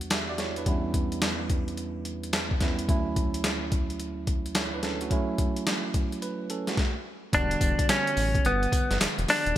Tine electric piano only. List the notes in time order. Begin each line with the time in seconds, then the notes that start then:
Already playing: E2 G3 B3 D4 F#4
0.12 G4 E5
0.30 F#4 D5
0.39 E4 C#5
0.58 D4 B4
0.66 E2 G3 B3 C#4 E4
2.61 E2 G3 B3 C#4 E4
2.88 D2 F#3 A3 C#4 E4
4.56 E4 C#5
4.74 D4 B4
4.84 C#4 A4
5.02 A3 F#4
5.10 F#3 A3 C#4 E4
6.22 B4
6.50 C#4 A4
6.68 A3 F#4
7.33 D3 G3 B3 F#4